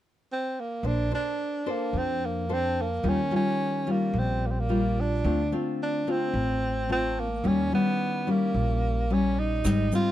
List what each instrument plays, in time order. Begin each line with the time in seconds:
0.32 tenor saxophone C4
0.60 tenor saxophone A#3
0.83 upright bass A#1, nylon-string guitar A#3 D4 A4 C5, tenor saxophone D4
1.11 nylon-string guitar D4 A4 C5, tenor saxophone D4
1.66 nylon-string guitar D4 A4 C5
1.70 tenor saxophone A#3
1.93 upright bass F2, nylon-string guitar F3
1.98 tenor saxophone C4
2.25 tenor saxophone A#3
2.49 nylon-string guitar D4 A4 C5
2.53 tenor saxophone C4
2.81 tenor saxophone A#3
3.03 upright bass D#2, nylon-string guitar D#3 G3 C#4 F4
3.09 tenor saxophone C#4
3.31 nylon-string guitar G3 C#4 F4
3.36 tenor saxophone C#4
3.87 nylon-string guitar G3 C#4 F4
3.91 tenor saxophone A#3
4.13 upright bass A#1, nylon-string guitar A#2
4.19 tenor saxophone C4
4.46 tenor saxophone A#3
4.51 tenor saxophone C4
4.60 tenor saxophone A#3
4.69 nylon-string guitar G3 C#4 F4
5.00 tenor saxophone D4
5.24 upright bass D2, nylon-string guitar D3 A3 C4 F4
5.52 nylon-string guitar A3 C4 F4
5.83 tenor saxophone D4
6.07 nylon-string guitar A3 C4 F4, tenor saxophone C4
6.34 upright bass A1, nylon-string guitar A2
6.89 nylon-string guitar A3 C4 F4, tenor saxophone C4
7.20 tenor saxophone A#3
7.44 upright bass D#2, nylon-string guitar D#3 G3 C#4 E4, tenor saxophone C#4
7.72 nylon-string guitar G3 C#4 E4, tenor saxophone B3
8.27 nylon-string guitar G3 C#4 E4, tenor saxophone A#3
8.54 upright bass A#1, nylon-string guitar A#2
9.10 nylon-string guitar G3 C#4 E4, tenor saxophone C#4
9.40 tenor saxophone D#4
9.64 upright bass G#1, nylon-string guitar G#2 G3 C4 D#4, kick, cross-stick, closed hi-hat, shaker
9.92 nylon-string guitar G3 C4 D#4, tenor saxophone F4, closed hi-hat, shaker